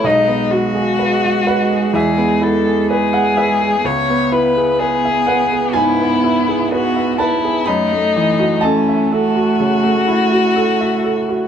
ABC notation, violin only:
X:1
M:4/4
L:1/8
Q:1/4=63
K:C#m
V:1 name="Violin"
D F3 G A G2 | c B G2 E2 F E | D2 C F4- F |]